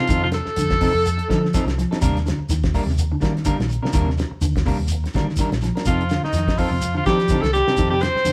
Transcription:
Already playing: F3 F4
0.07 F2 D#3 F3 C4 D#4 A4, kick, closed hi-hat, shekere
0.22 C3 F3 F4
0.32 A3 A4, muted clean electric guitar stroke, snare, closed hi-hat, shekere
0.46 muted fingered electric bass stroke, muted clean electric guitar stroke, snare
0.56 F2 D3, muted clean electric guitar stroke, closed hi-hat, shekere
0.70 kick, snare, closed hi-hat
0.81 C3 F3 C4 D#4 A4, kick, open hi-hat, shekere
0.94 F2, muted clean electric guitar stroke
1.06 closed hi-hat, shekere
1.18 muted clean electric guitar stroke, closed hi-hat
1.28 D3 F3 D#4 A4, muted clean electric guitar stroke, kick, snare, closed hi-hat, shekere
1.41 muted clean electric guitar stroke
1.45 snare
1.54 F3 C4 D#4 A4, muted clean electric guitar stroke, kick, snare, closed hi-hat, shekere
1.65 C2, muted clean electric guitar stroke, snare, closed hi-hat
1.78 F3, muted clean electric guitar stroke, snare, closed hi-hat, shekere
1.91 C4 D#4 A4, snare, closed hi-hat
2.01 D#2 C3 G3 A#3 D4 A#4, kick, closed hi-hat, shekere
2.17 snare, closed hi-hat
2.26 D3, muted clean electric guitar stroke, snare, closed hi-hat, shekere
2.39 muted clean electric guitar stroke, muted fingered electric bass stroke
2.49 D#2 D#3, muted clean electric guitar stroke, snare, closed hi-hat, shekere
2.64 kick, snare, closed hi-hat
2.74 G3 A#3 D4 A#4, kick, open hi-hat, shekere
2.86 D#2 C3, muted clean electric guitar stroke, snare
2.98 closed hi-hat, shekere
3.12 D3, muted clean electric guitar stroke
3.20 D#3 G3 A#3 D4 A#4, kick, snare, closed hi-hat, shekere
3.35 muted clean electric guitar stroke, snare, closed hi-hat
3.45 D3 G3 A#3 D4 A#4, kick, closed hi-hat, shekere
3.59 A#1 D#3, muted clean electric guitar stroke, snare, closed hi-hat
3.69 muted clean electric guitar stroke, closed hi-hat, shekere
3.82 C3 A#3 D4 A#4, snare
3.93 D#2 D#3 G3 A#3 D4 A#4, kick, closed hi-hat, shekere
4.06 C3
4.10 snare
4.18 muted clean electric guitar stroke, snare, closed hi-hat, shekere
4.31 muted clean electric guitar stroke, muted fingered electric bass stroke
4.41 D#2 D3, muted clean electric guitar stroke, closed hi-hat, shekere
4.56 kick, snare, closed hi-hat
4.66 C3 G3 A#3 D4 A#4, kick, open hi-hat, shekere
4.78 D#2, muted clean electric guitar stroke
4.88 closed hi-hat, shekere
5.04 muted clean electric guitar stroke, snare, closed hi-hat
5.13 D3 D#3 G3 A#3 D4 A#4, kick, snare, closed hi-hat, shekere
5.29 muted clean electric guitar stroke, snare
5.36 D#3 G3 D4, kick, closed hi-hat, shekere
5.41 A#4
5.52 A#1, muted clean electric guitar stroke, snare, closed hi-hat
5.61 F3, muted clean electric guitar stroke, snare, closed hi-hat, shekere
5.75 A#3 D4 A#4, snare, closed hi-hat
5.85 F2 C3 F3 C4 D#4 F4 A4, kick, snare, closed hi-hat, shekere
6.01 closed hi-hat
6.09 D3, muted clean electric guitar stroke, snare, closed hi-hat, shekere
6.23 D#3 D#4, muted fingered electric bass stroke, muted clean electric guitar stroke, snare
6.33 F2 D#3, muted clean electric guitar stroke, snare, closed hi-hat, shekere
6.48 kick, snare, closed hi-hat
6.56 F3 C4 D#4 F4 A4, kick, open hi-hat, shekere
6.70 F2 C3, muted clean electric guitar stroke
6.81 closed hi-hat, shekere
6.94 D3 F3 F4, muted clean electric guitar stroke
7.06 D#3 F3 G3 C4 D#4 G4 A4, kick, snare, closed hi-hat, shekere
7.20 muted clean electric guitar stroke, snare, closed hi-hat
7.28 D3 F3 C4 D#4 A4, kick, closed hi-hat, shekere
7.41 C2 D#3 A3 A4, muted clean electric guitar stroke, snare, closed hi-hat
7.53 G3 G4, muted clean electric guitar stroke, snare, closed hi-hat, shekere
7.67 C3 C4 D#4 A4, snare
7.77 F2 D#3 F3 C4 D#4 A4, kick, closed hi-hat, shekere
7.90 C3 G3 G4
8.00 C4 C5, muted clean electric guitar stroke, snare, closed hi-hat, shekere
8.14 muted fingered electric bass stroke, muted clean electric guitar stroke, snare
8.25 F2 D3, muted clean electric guitar stroke, snare, closed hi-hat, shekere

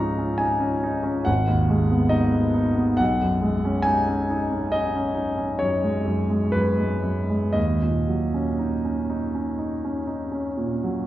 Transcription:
Already playing: C#2 G#2 F3 C#4 A#5 C#6
0.00 D#4
0.18 C#4
0.38 D#4 G#5
0.60 C#4
0.83 D#4
1.03 C#4
1.25 G#1 F#5
1.47 D#2
1.70 G#3
1.91 B3
2.09 D#4 D#5
2.33 B3
2.54 D#4
2.76 B3
2.97 B1 F#5
3.22 F#2
3.42 G#3
3.65 C#4
3.82 D#4 G#5
4.07 C#4
4.30 D#4
4.51 C#4
4.72 D#4 D#5
4.95 C#4
5.15 D#4
5.37 C#4
5.59 F#2 C#5
5.84 G#3
6.05 F#2
6.30 G#3
6.52 F#2 B4
6.79 G#3
7.02 F#2
7.30 G#3
7.53 D#2 D#5
7.82 A#2
8.08 F#3
8.34 C#4
8.59 D#4
8.85 C#4
9.10 D#4
9.35 C#4
9.58 D#4
9.85 C#4
10.07 D#4
10.32 C#4
10.57 A#2
10.84 F#3

